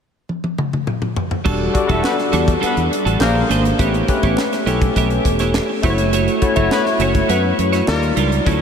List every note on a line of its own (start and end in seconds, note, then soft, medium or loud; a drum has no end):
0.29 high tom soft
0.44 high tom medium
0.58 mid tom medium
0.73 mid tom medium
0.87 mid tom medium
1.02 mid tom medium
1.16 floor tom medium
1.31 floor tom medium
1.45 1.67 E1 medium
1.45 1.72 G3 medium
1.45 1.63 G3 medium
1.45 1.72 D4 medium
1.45 1.63 D4 medium
1.45 1.72 F#4 medium
1.45 1.63 F#4 medium
1.45 1.63 A4 medium
1.45 1.73 A4 medium
1.45 kick loud
1.45 crash medium
1.73 1.83 G3 medium
1.73 1.83 D4 medium
1.73 1.86 D4 medium
1.73 1.83 F#4 medium
1.73 1.83 A4 medium
1.73 1.86 D5 medium
1.73 muted clean electric guitar stroke soft
1.73 kick loud
1.73 closed hi-hat medium
1.87 2.00 E1 medium
1.87 2.59 G3 medium
1.87 2.59 D4 medium
1.87 2.04 D4 medium
1.87 2.02 E4 medium
1.87 2.59 F#4 medium
1.87 2.03 F#4 soft
1.87 2.60 A4 medium
1.87 2.03 A4 medium
1.87 kick medium
1.87 closed hi-hat soft
1.91 2.04 G3 soft
1.91 2.02 E5 medium
2.03 2.15 B3 medium
2.03 2.15 B4 medium
2.03 snare medium
2.03 clap medium
2.18 muted clean electric guitar stroke soft
2.18 snare soft
2.32 2.55 E2 medium
2.32 2.50 G3 medium
2.32 2.46 D4 medium
2.32 2.57 D4 medium
2.32 2.46 F#4 medium
2.32 2.45 A4 medium
2.32 2.57 D5 medium
2.32 closed hi-hat medium
2.46 muted clean electric guitar stroke soft
2.46 kick loud
2.46 closed hi-hat medium
2.60 2.79 G3 medium
2.60 2.87 B3 loud
2.60 2.76 D4 medium
2.60 2.75 F#4 medium
2.60 2.75 A4 loud
2.60 2.87 B4 loud
2.60 muted fretless electric bass stroke soft
2.60 closed hi-hat medium
2.76 2.88 E2 medium
2.76 muted clean electric guitar stroke medium
2.76 closed hi-hat soft
2.91 muted clean electric guitar stroke soft
2.91 closed hi-hat medium
3.05 3.17 A1 loud
3.05 3.20 G3 soft
3.05 3.20 D4 medium
3.05 3.20 F#4 medium
3.05 3.19 A4 medium
3.05 closed hi-hat medium
3.19 3.42 A#1 medium
3.19 3.67 A#3 medium
3.19 3.45 A#3 medium
3.19 3.27 C#4 medium
3.19 3.67 G#4 medium
3.19 3.44 A#4 loud
3.19 3.67 C5 loud
3.19 muted clean electric guitar stroke soft
3.19 snare loud
3.19 clap medium
3.26 3.70 D4 medium
3.35 muted clean electric guitar stroke soft
3.49 3.72 G#1 medium
3.49 3.67 A#3 medium
3.49 3.65 D4 medium
3.49 3.64 G#4 medium
3.49 3.63 C5 medium
3.49 closed hi-hat medium
3.65 muted clean electric guitar stroke soft
3.65 closed hi-hat soft
3.78 4.01 A1 loud
3.78 3.97 A3 medium
3.78 4.06 B3 medium
3.78 3.97 C#4 medium
3.78 4.06 E4 medium
3.78 3.97 G4 medium
3.78 4.07 G4 medium
3.78 3.97 B4 medium
3.78 4.07 C#5 medium
3.78 kick loud
3.78 closed hi-hat loud
3.94 closed hi-hat soft
4.08 4.44 A3 medium
4.08 4.44 C#4 medium
4.08 4.44 G4 medium
4.08 4.44 B4 medium
4.08 muted clean electric guitar stroke soft
4.08 kick medium
4.08 closed hi-hat medium
4.23 4.34 A1 medium
4.23 4.38 B3 soft
4.23 4.38 E4 soft
4.23 4.37 G4 medium
4.23 4.37 C#5 medium
4.23 kick loud
4.23 closed hi-hat soft
4.38 snare medium
4.38 clap medium
4.52 muted clean electric guitar stroke soft
4.52 snare soft
4.52 closed hi-hat soft
4.66 4.88 B1 medium
4.66 5.37 A3 medium
4.66 4.84 B3 medium
4.66 5.38 C#4 medium
4.66 4.81 E4 medium
4.66 5.38 G4 medium
4.66 4.81 G4 medium
4.66 5.38 A4 medium
4.66 4.80 C#5 medium
4.66 closed hi-hat medium
4.81 muted clean electric guitar stroke soft
4.81 kick loud
4.81 closed hi-hat medium
4.96 5.18 B1 medium
4.96 5.14 B3 medium
4.96 5.10 E4 medium
4.96 5.10 G4 medium
4.96 5.10 E5 medium
4.96 kick medium
4.96 closed hi-hat medium
5.10 muted clean electric guitar stroke soft
5.10 closed hi-hat soft
5.25 5.58 E1 medium
5.25 muted clean electric guitar stroke soft
5.25 kick medium
5.25 closed hi-hat medium
5.39 5.53 B3 soft
5.39 5.53 E4 soft
5.39 5.54 G4 soft
5.39 5.54 C#5 medium
5.39 snare soft
5.39 closed hi-hat soft
5.54 muted clean electric guitar stroke soft
5.54 snare loud
5.54 clap medium
5.69 muted clean electric guitar stroke soft
5.82 6.27 F#1 medium
5.82 6.30 A3 medium
5.82 5.98 A3 medium
5.82 6.30 E4 medium
5.82 5.98 E4 medium
5.82 6.30 F#4 medium
5.82 5.97 F#4 medium
5.82 5.90 C5 medium
5.82 5.97 C#5 medium
5.82 kick medium
5.82 closed hi-hat medium
5.90 6.34 C#5 medium
5.98 6.12 A3 soft
5.98 6.12 E4 soft
5.98 6.12 F#4 medium
5.98 6.12 C#5 medium
5.98 closed hi-hat soft
6.13 6.40 A3 medium
6.13 6.40 E4 medium
6.13 6.40 F#4 medium
6.13 6.41 C#5 medium
6.13 closed hi-hat loud
6.28 closed hi-hat soft
6.41 6.51 A3 medium
6.41 6.54 C#4 medium
6.41 6.51 E4 medium
6.41 6.51 F#4 medium
6.41 6.54 C#5 medium
6.41 6.51 C#5 medium
6.41 muted clean electric guitar stroke soft
6.41 kick medium
6.41 closed hi-hat medium
6.56 6.68 F#1 medium
6.56 7.27 A3 medium
6.56 6.71 A3 soft
6.56 7.27 E4 medium
6.56 6.69 E4 medium
6.56 6.71 E4 soft
6.56 7.28 F#4 medium
6.56 6.71 F#4 medium
6.56 6.70 C#5 medium
6.56 7.28 C#5 medium
6.56 6.69 E5 medium
6.56 kick medium
6.56 closed hi-hat soft
6.71 6.83 B3 medium
6.71 6.83 B4 loud
6.71 snare medium
6.71 clap medium
6.85 muted clean electric guitar stroke medium
6.85 snare soft
6.99 7.21 F#1 medium
6.99 7.18 A3 medium
6.99 7.25 C#4 medium
6.99 7.14 E4 medium
6.99 7.14 F#4 medium
6.99 7.13 C#5 medium
6.99 7.25 C#5 medium
6.99 closed hi-hat medium
7.14 muted clean electric guitar stroke soft
7.14 kick medium
7.14 closed hi-hat medium
7.29 7.51 F#2 medium
7.29 7.47 A3 medium
7.29 7.53 B3 medium
7.29 7.44 E4 medium
7.29 7.44 F#4 medium
7.29 7.54 B4 loud
7.29 7.43 C#5 medium
7.29 closed hi-hat medium
7.44 muted clean electric guitar stroke soft
7.58 7.81 F#2 medium
7.58 muted clean electric guitar stroke soft
7.58 closed hi-hat medium
7.73 7.87 A3 medium
7.73 7.88 E4 medium
7.73 7.87 F#4 medium
7.73 7.87 C#5 medium
7.73 snare soft
7.73 closed hi-hat soft
7.87 8.10 D#2 medium
7.87 8.35 G3 medium
7.87 8.12 A#3 medium
7.87 8.35 D#4 medium
7.87 8.35 F4 medium
7.87 8.12 A#4 loud
7.87 8.35 D5 medium
7.87 muted clean electric guitar stroke soft
7.87 snare loud
7.87 clap medium
8.02 muted clean electric guitar stroke soft
8.02 closed hi-hat soft
8.16 8.39 C#2 medium
8.16 8.35 G3 medium
8.16 8.31 D4 medium
8.16 8.31 F4 medium
8.16 8.30 A#4 medium
8.16 closed hi-hat medium
8.31 muted clean electric guitar stroke soft
8.31 closed hi-hat soft
8.45 8.61 D2 medium
8.45 8.61 F#3 medium
8.45 8.61 C#4 medium
8.45 8.61 D4 medium
8.45 8.61 E4 medium
8.45 8.61 A4 medium
8.45 8.61 C#5 medium
8.45 kick medium
8.45 closed hi-hat medium